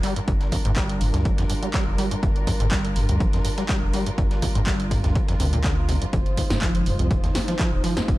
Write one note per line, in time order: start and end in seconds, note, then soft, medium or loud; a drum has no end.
0.00 6.09 G3 medium
0.00 0.14 G3 loud
0.00 6.09 D4 medium
0.00 8.18 F4 medium
0.00 6.09 A#4 medium
0.00 snare medium
0.00 closed hi-hat medium
0.00 open hi-hat loud
0.16 0.20 G2 medium
0.16 closed hi-hat medium
0.28 0.39 G1 loud
0.28 0.32 G2 loud
0.28 kick loud
0.28 closed hi-hat medium
0.41 snare soft
0.41 closed hi-hat soft
0.52 0.56 F2 loud
0.52 kick medium
0.52 closed hi-hat medium
0.52 open hi-hat loud
0.65 0.98 G1 medium
0.65 0.71 G#2 loud
0.65 closed hi-hat medium
0.76 1.02 G3 loud
0.76 kick loud
0.76 snare loud
0.76 clap loud
0.76 closed hi-hat medium
0.89 closed hi-hat medium
0.89 closed hi-hat soft
1.01 1.12 G1 medium
1.01 1.12 G2 loud
1.01 closed hi-hat medium
1.01 open hi-hat loud
1.14 1.23 D2 loud
1.14 1.27 G2 medium
1.14 snare soft
1.14 closed hi-hat medium
1.25 1.36 G1 medium
1.25 1.32 G3 medium
1.25 kick loud
1.25 closed hi-hat medium
1.38 1.45 F2 loud
1.38 snare medium
1.38 closed hi-hat medium
1.50 1.54 G2 medium
1.50 closed hi-hat medium
1.50 open hi-hat loud
1.63 1.69 G3 medium
1.63 closed hi-hat medium
1.74 1.85 G3 loud
1.74 kick loud
1.74 snare loud
1.74 clap loud
1.74 closed hi-hat medium
1.87 1.97 F1 medium
1.98 2.09 G3 loud
1.98 snare soft
1.98 closed hi-hat medium
1.98 open hi-hat loud
2.11 2.15 G2 medium
2.11 closed hi-hat medium
2.23 2.34 G1 loud
2.23 2.27 G2 loud
2.23 kick loud
2.23 closed hi-hat medium
2.36 closed hi-hat soft
2.47 2.51 F2 loud
2.47 kick medium
2.47 closed hi-hat medium
2.47 open hi-hat loud
2.60 2.93 G1 medium
2.60 2.66 G#2 loud
2.60 closed hi-hat medium
2.71 2.97 G3 medium
2.71 kick loud
2.71 snare loud
2.71 clap loud
2.71 closed hi-hat medium
2.85 closed hi-hat soft
2.96 3.07 G1 medium
2.96 3.07 G2 loud
2.96 closed hi-hat medium
2.96 open hi-hat loud
3.09 3.19 D2 loud
3.09 3.22 G2 medium
3.09 closed hi-hat medium
3.20 3.31 G1 medium
3.20 3.27 G3 medium
3.20 kick loud
3.20 closed hi-hat medium
3.33 3.40 F2 loud
3.33 snare soft
3.33 closed hi-hat medium
3.45 3.49 G2 medium
3.45 closed hi-hat medium
3.45 open hi-hat loud
3.58 3.64 G3 medium
3.58 snare medium
3.58 closed hi-hat medium
3.69 3.80 G3 loud
3.69 kick loud
3.69 snare loud
3.69 clap loud
3.69 closed hi-hat medium
3.82 3.92 F1 medium
3.93 4.04 G3 loud
3.93 snare medium
3.93 closed hi-hat medium
3.93 open hi-hat loud
4.06 4.10 G2 medium
4.06 closed hi-hat medium
4.18 4.29 G1 loud
4.18 4.22 G2 loud
4.18 kick loud
4.18 closed hi-hat medium
4.31 snare soft
4.31 closed hi-hat soft
4.42 4.47 F2 medium
4.42 kick medium
4.42 closed hi-hat medium
4.42 open hi-hat loud
4.55 4.88 G1 medium
4.55 4.62 G#2 medium
4.55 closed hi-hat medium
4.66 4.93 G3 loud
4.66 kick loud
4.66 snare loud
4.66 clap loud
4.66 closed hi-hat medium
4.80 closed hi-hat soft
4.91 5.02 G1 medium
4.91 5.02 G2 loud
4.91 kick medium
4.91 closed hi-hat medium
4.91 open hi-hat loud
5.04 5.14 D2 loud
5.04 5.17 G2 medium
5.04 snare soft
5.04 closed hi-hat medium
5.15 5.23 G3 medium
5.15 kick loud
5.15 closed hi-hat medium
5.28 5.35 F2 loud
5.28 snare medium
5.28 closed hi-hat soft
5.40 5.98 D2 medium
5.40 5.47 C3 medium
5.40 closed hi-hat medium
5.40 open hi-hat loud
5.53 5.59 A#2 loud
5.53 closed hi-hat medium
5.64 5.75 D3 medium
5.64 kick loud
5.64 snare loud
5.64 clap loud
5.64 closed hi-hat medium
5.89 5.96 C3 medium
5.89 snare soft
5.89 closed hi-hat medium
5.89 open hi-hat loud
6.02 6.05 F2 medium
6.02 closed hi-hat medium
6.13 6.24 F1 loud
6.13 6.17 F2 loud
6.13 8.18 G#3 medium
6.13 8.18 D#4 medium
6.13 8.18 C5 medium
6.13 kick loud
6.13 closed hi-hat medium
6.26 closed hi-hat soft
6.37 6.42 D#2 loud
6.37 kick medium
6.37 closed hi-hat medium
6.37 open hi-hat loud
6.50 6.83 F1 medium
6.50 6.57 G2 loud
6.50 snare medium
6.50 closed hi-hat medium
6.62 6.88 F3 loud
6.62 kick loud
6.62 snare loud
6.62 clap loud
6.62 closed hi-hat medium
6.75 closed hi-hat soft
6.86 6.97 F1 medium
6.86 6.97 F2 loud
6.86 closed hi-hat medium
6.86 open hi-hat medium
6.99 7.09 C2 loud
6.99 7.12 F2 medium
6.99 closed hi-hat medium
7.11 7.22 F1 medium
7.11 7.18 F3 medium
7.11 kick loud
7.11 closed hi-hat medium
7.24 7.30 D#2 loud
7.24 snare soft
7.24 closed hi-hat medium
7.35 7.39 F2 medium
7.35 snare medium
7.35 closed hi-hat medium
7.35 open hi-hat loud
7.48 7.54 F3 medium
7.48 snare medium
7.48 closed hi-hat medium
7.59 7.70 F3 loud
7.59 kick loud
7.59 snare loud
7.59 clap loud
7.59 closed hi-hat medium
7.72 7.82 D#1 medium
7.84 7.95 F3 loud
7.84 snare medium
7.84 closed hi-hat medium
7.84 open hi-hat loud
7.97 8.01 F2 medium
7.97 snare medium
7.97 closed hi-hat medium
8.08 8.18 F1 loud
8.08 8.12 F2 loud
8.08 kick loud
8.08 closed hi-hat medium